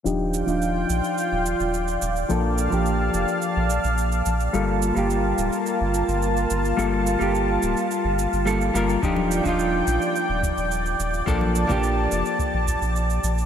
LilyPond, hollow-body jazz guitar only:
\new Staff \with { instrumentName = "Hollow-body jazz guitar" } { \time 4/4 \key ees \lydian \tempo 4 = 107 <f d' ees' g'>8. <f d' ees' f'>2.~ <f d' ees' f'>16 | <f bes d' a'>8. <f bes d' g'>2.~ <f bes d' g'>16 | <g bes f' a'>8. <g bes f' g'>2.~ <g bes f' g'>16 | <g bes f' a'>8. <g bes f' g'>2~ <g bes f' g'>16 <g bes f' a'>8 <g bes f' bes'>8 |
<f d' ees' g'>8. <f d' ees' f'>2.~ <f d' ees' f'>16 | <f bes d' a'>8. <f bes d' g'>2.~ <f bes d' g'>16 | }